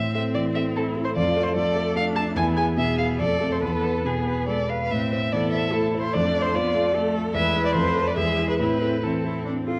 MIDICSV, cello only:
0, 0, Header, 1, 2, 480
1, 0, Start_track
1, 0, Key_signature, 0, "minor"
1, 0, Tempo, 407332
1, 1373, Time_signature, 3, 2, 24, 8
1, 3763, Tempo, 425532
1, 6163, Tempo, 405405
1, 9043, Tempo, 426439
1, 11342, End_track
2, 0, Start_track
2, 0, Title_t, "Cello"
2, 0, Program_c, 0, 42
2, 0, Note_on_c, 0, 60, 47
2, 858, Note_off_c, 0, 60, 0
2, 902, Note_on_c, 0, 64, 44
2, 1366, Note_off_c, 0, 64, 0
2, 1375, Note_on_c, 0, 65, 49
2, 1836, Note_off_c, 0, 65, 0
2, 1841, Note_on_c, 0, 69, 53
2, 2318, Note_on_c, 0, 62, 52
2, 2336, Note_off_c, 0, 69, 0
2, 2778, Note_off_c, 0, 62, 0
2, 2785, Note_on_c, 0, 64, 57
2, 3262, Note_off_c, 0, 64, 0
2, 3271, Note_on_c, 0, 68, 51
2, 3760, Note_on_c, 0, 69, 48
2, 3777, Note_off_c, 0, 68, 0
2, 4239, Note_on_c, 0, 71, 44
2, 4256, Note_off_c, 0, 69, 0
2, 4676, Note_off_c, 0, 71, 0
2, 4727, Note_on_c, 0, 71, 45
2, 4817, Note_off_c, 0, 71, 0
2, 4984, Note_on_c, 0, 71, 43
2, 5215, Note_off_c, 0, 71, 0
2, 5227, Note_on_c, 0, 69, 43
2, 5458, Note_off_c, 0, 69, 0
2, 5464, Note_on_c, 0, 71, 39
2, 5695, Note_off_c, 0, 71, 0
2, 6172, Note_on_c, 0, 69, 47
2, 6651, Note_on_c, 0, 64, 48
2, 6669, Note_off_c, 0, 69, 0
2, 7144, Note_on_c, 0, 62, 50
2, 7161, Note_off_c, 0, 64, 0
2, 7612, Note_on_c, 0, 65, 52
2, 7630, Note_off_c, 0, 62, 0
2, 8091, Note_on_c, 0, 69, 58
2, 8109, Note_off_c, 0, 65, 0
2, 8556, Note_on_c, 0, 71, 66
2, 8574, Note_off_c, 0, 69, 0
2, 9510, Note_on_c, 0, 68, 54
2, 9527, Note_off_c, 0, 71, 0
2, 9987, Note_off_c, 0, 68, 0
2, 9993, Note_on_c, 0, 64, 38
2, 10423, Note_off_c, 0, 64, 0
2, 10472, Note_on_c, 0, 64, 44
2, 10562, Note_off_c, 0, 64, 0
2, 10711, Note_on_c, 0, 64, 42
2, 10945, Note_off_c, 0, 64, 0
2, 10952, Note_on_c, 0, 62, 49
2, 11042, Note_off_c, 0, 62, 0
2, 11200, Note_on_c, 0, 65, 49
2, 11342, Note_off_c, 0, 65, 0
2, 11342, End_track
0, 0, End_of_file